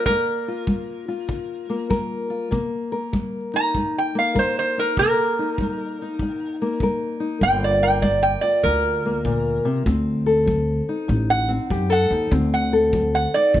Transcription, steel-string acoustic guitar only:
0, 0, Header, 1, 2, 480
1, 0, Start_track
1, 0, Key_signature, -2, "minor"
1, 0, Tempo, 612870
1, 60, Time_signature, 4, 2, 24, 8
1, 10652, End_track
2, 0, Start_track
2, 0, Title_t, "Steel-string acoustic guitar"
2, 0, Program_c, 0, 25
2, 0, Note_on_c, 0, 70, 72
2, 68, Note_on_c, 0, 43, 78
2, 74, Note_on_c, 0, 58, 65
2, 376, Note_on_c, 0, 65, 60
2, 511, Note_off_c, 0, 43, 0
2, 524, Note_on_c, 0, 55, 60
2, 838, Note_off_c, 0, 65, 0
2, 848, Note_on_c, 0, 65, 58
2, 979, Note_off_c, 0, 55, 0
2, 1005, Note_on_c, 0, 50, 67
2, 1324, Note_off_c, 0, 58, 0
2, 1328, Note_on_c, 0, 58, 55
2, 1459, Note_off_c, 0, 50, 0
2, 1485, Note_off_c, 0, 70, 0
2, 1485, Note_on_c, 0, 55, 64
2, 1488, Note_on_c, 0, 70, 75
2, 1792, Note_off_c, 0, 65, 0
2, 1801, Note_on_c, 0, 65, 57
2, 1940, Note_off_c, 0, 55, 0
2, 1952, Note_off_c, 0, 65, 0
2, 1964, Note_on_c, 0, 48, 76
2, 1966, Note_off_c, 0, 58, 0
2, 1969, Note_on_c, 0, 58, 62
2, 1988, Note_off_c, 0, 70, 0
2, 2287, Note_on_c, 0, 70, 67
2, 2419, Note_off_c, 0, 48, 0
2, 2449, Note_on_c, 0, 55, 62
2, 2770, Note_on_c, 0, 63, 61
2, 2901, Note_off_c, 0, 55, 0
2, 2948, Note_on_c, 0, 43, 66
2, 3247, Note_off_c, 0, 58, 0
2, 3250, Note_on_c, 0, 58, 58
2, 3390, Note_off_c, 0, 43, 0
2, 3403, Note_on_c, 0, 55, 69
2, 3404, Note_off_c, 0, 70, 0
2, 3407, Note_on_c, 0, 70, 77
2, 3732, Note_off_c, 0, 63, 0
2, 3741, Note_on_c, 0, 63, 53
2, 3857, Note_off_c, 0, 55, 0
2, 3881, Note_off_c, 0, 63, 0
2, 3911, Note_off_c, 0, 58, 0
2, 3913, Note_on_c, 0, 48, 78
2, 3914, Note_on_c, 0, 58, 61
2, 3937, Note_off_c, 0, 70, 0
2, 4221, Note_on_c, 0, 63, 55
2, 4353, Note_off_c, 0, 48, 0
2, 4392, Note_on_c, 0, 55, 62
2, 4697, Note_off_c, 0, 63, 0
2, 4714, Note_on_c, 0, 63, 63
2, 4832, Note_off_c, 0, 55, 0
2, 4869, Note_on_c, 0, 43, 66
2, 5173, Note_off_c, 0, 58, 0
2, 5182, Note_on_c, 0, 58, 55
2, 5310, Note_off_c, 0, 43, 0
2, 5342, Note_on_c, 0, 55, 68
2, 5349, Note_on_c, 0, 70, 71
2, 5630, Note_off_c, 0, 63, 0
2, 5639, Note_on_c, 0, 63, 61
2, 5787, Note_off_c, 0, 55, 0
2, 5790, Note_off_c, 0, 63, 0
2, 5801, Note_off_c, 0, 58, 0
2, 5802, Note_off_c, 0, 70, 0
2, 5805, Note_on_c, 0, 43, 80
2, 5810, Note_on_c, 0, 58, 67
2, 6134, Note_on_c, 0, 70, 72
2, 6258, Note_off_c, 0, 43, 0
2, 6280, Note_on_c, 0, 55, 61
2, 6605, Note_on_c, 0, 65, 61
2, 6735, Note_off_c, 0, 55, 0
2, 6771, Note_on_c, 0, 50, 73
2, 7083, Note_off_c, 0, 58, 0
2, 7093, Note_on_c, 0, 58, 63
2, 7221, Note_off_c, 0, 50, 0
2, 7243, Note_on_c, 0, 46, 69
2, 7558, Note_on_c, 0, 48, 66
2, 7566, Note_off_c, 0, 46, 0
2, 7712, Note_off_c, 0, 65, 0
2, 7717, Note_off_c, 0, 70, 0
2, 7721, Note_off_c, 0, 48, 0
2, 7723, Note_off_c, 0, 58, 0
2, 7724, Note_on_c, 0, 50, 83
2, 7726, Note_on_c, 0, 60, 63
2, 8038, Note_on_c, 0, 69, 70
2, 8177, Note_off_c, 0, 50, 0
2, 8193, Note_on_c, 0, 54, 65
2, 8527, Note_on_c, 0, 63, 63
2, 8652, Note_off_c, 0, 54, 0
2, 8678, Note_on_c, 0, 45, 69
2, 8992, Note_off_c, 0, 60, 0
2, 8995, Note_on_c, 0, 60, 57
2, 9134, Note_off_c, 0, 45, 0
2, 9165, Note_on_c, 0, 54, 72
2, 9167, Note_off_c, 0, 69, 0
2, 9170, Note_on_c, 0, 67, 72
2, 9319, Note_off_c, 0, 67, 0
2, 9319, Note_on_c, 0, 69, 57
2, 9488, Note_off_c, 0, 63, 0
2, 9491, Note_on_c, 0, 63, 57
2, 9618, Note_off_c, 0, 54, 0
2, 9647, Note_off_c, 0, 60, 0
2, 9648, Note_off_c, 0, 69, 0
2, 9650, Note_on_c, 0, 60, 64
2, 9651, Note_on_c, 0, 50, 80
2, 9674, Note_off_c, 0, 63, 0
2, 9970, Note_on_c, 0, 69, 72
2, 10101, Note_off_c, 0, 50, 0
2, 10136, Note_on_c, 0, 54, 57
2, 10462, Note_on_c, 0, 63, 61
2, 10584, Note_off_c, 0, 54, 0
2, 10622, Note_on_c, 0, 45, 64
2, 10652, Note_off_c, 0, 45, 0
2, 10652, Note_off_c, 0, 60, 0
2, 10652, Note_off_c, 0, 63, 0
2, 10652, Note_off_c, 0, 69, 0
2, 10652, End_track
0, 0, End_of_file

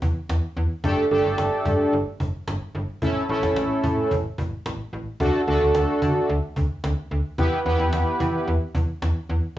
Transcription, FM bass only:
0, 0, Header, 1, 2, 480
1, 0, Start_track
1, 0, Tempo, 545455
1, 738, Time_signature, 4, 2, 24, 8
1, 8432, End_track
2, 0, Start_track
2, 0, Title_t, "FM bass"
2, 0, Program_c, 0, 39
2, 17, Note_on_c, 0, 40, 99
2, 106, Note_off_c, 0, 40, 0
2, 258, Note_on_c, 0, 40, 90
2, 347, Note_off_c, 0, 40, 0
2, 497, Note_on_c, 0, 40, 97
2, 586, Note_off_c, 0, 40, 0
2, 738, Note_on_c, 0, 31, 107
2, 827, Note_off_c, 0, 31, 0
2, 977, Note_on_c, 0, 31, 98
2, 1066, Note_off_c, 0, 31, 0
2, 1097, Note_on_c, 0, 31, 97
2, 1186, Note_off_c, 0, 31, 0
2, 1218, Note_on_c, 0, 31, 102
2, 1307, Note_off_c, 0, 31, 0
2, 1456, Note_on_c, 0, 43, 99
2, 1546, Note_off_c, 0, 43, 0
2, 1698, Note_on_c, 0, 31, 98
2, 1787, Note_off_c, 0, 31, 0
2, 1938, Note_on_c, 0, 31, 90
2, 2026, Note_off_c, 0, 31, 0
2, 2178, Note_on_c, 0, 31, 106
2, 2267, Note_off_c, 0, 31, 0
2, 2418, Note_on_c, 0, 31, 103
2, 2507, Note_off_c, 0, 31, 0
2, 2657, Note_on_c, 0, 33, 100
2, 2746, Note_off_c, 0, 33, 0
2, 2896, Note_on_c, 0, 33, 108
2, 2985, Note_off_c, 0, 33, 0
2, 3017, Note_on_c, 0, 33, 102
2, 3106, Note_off_c, 0, 33, 0
2, 3138, Note_on_c, 0, 33, 103
2, 3227, Note_off_c, 0, 33, 0
2, 3377, Note_on_c, 0, 45, 100
2, 3466, Note_off_c, 0, 45, 0
2, 3620, Note_on_c, 0, 33, 105
2, 3708, Note_off_c, 0, 33, 0
2, 3858, Note_on_c, 0, 33, 99
2, 3946, Note_off_c, 0, 33, 0
2, 4099, Note_on_c, 0, 33, 99
2, 4187, Note_off_c, 0, 33, 0
2, 4338, Note_on_c, 0, 33, 94
2, 4426, Note_off_c, 0, 33, 0
2, 4577, Note_on_c, 0, 38, 100
2, 4666, Note_off_c, 0, 38, 0
2, 4818, Note_on_c, 0, 38, 102
2, 4907, Note_off_c, 0, 38, 0
2, 4937, Note_on_c, 0, 38, 99
2, 5026, Note_off_c, 0, 38, 0
2, 5057, Note_on_c, 0, 38, 104
2, 5146, Note_off_c, 0, 38, 0
2, 5297, Note_on_c, 0, 50, 98
2, 5386, Note_off_c, 0, 50, 0
2, 5538, Note_on_c, 0, 38, 104
2, 5627, Note_off_c, 0, 38, 0
2, 5779, Note_on_c, 0, 38, 93
2, 5867, Note_off_c, 0, 38, 0
2, 6018, Note_on_c, 0, 38, 103
2, 6106, Note_off_c, 0, 38, 0
2, 6258, Note_on_c, 0, 38, 97
2, 6347, Note_off_c, 0, 38, 0
2, 6497, Note_on_c, 0, 40, 96
2, 6586, Note_off_c, 0, 40, 0
2, 6737, Note_on_c, 0, 40, 105
2, 6826, Note_off_c, 0, 40, 0
2, 6857, Note_on_c, 0, 40, 107
2, 6946, Note_off_c, 0, 40, 0
2, 6978, Note_on_c, 0, 40, 108
2, 7067, Note_off_c, 0, 40, 0
2, 7217, Note_on_c, 0, 52, 98
2, 7306, Note_off_c, 0, 52, 0
2, 7457, Note_on_c, 0, 40, 103
2, 7546, Note_off_c, 0, 40, 0
2, 7697, Note_on_c, 0, 40, 101
2, 7786, Note_off_c, 0, 40, 0
2, 7938, Note_on_c, 0, 40, 94
2, 8027, Note_off_c, 0, 40, 0
2, 8178, Note_on_c, 0, 40, 98
2, 8267, Note_off_c, 0, 40, 0
2, 8432, End_track
0, 0, End_of_file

